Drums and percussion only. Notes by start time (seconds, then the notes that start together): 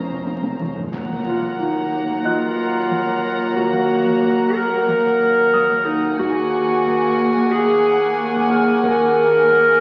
0.11 taiko
0.27 taiko high
0.43 taiko high
0.60 taiko mid
0.76 taiko low
0.92 taiko
1.09 taiko mid
1.41 taiko mid
1.58 taiko
2.08 taiko
2.25 taiko mid
2.91 taiko mid
3.07 taiko
3.56 taiko
3.73 taiko mid
4.06 taiko mid
4.22 taiko
4.71 taiko
4.88 taiko mid
5.54 taiko mid
5.70 taiko
6.19 taiko
6.86 taiko
7.35 taiko
8.34 taiko
8.83 taiko
9.50 taiko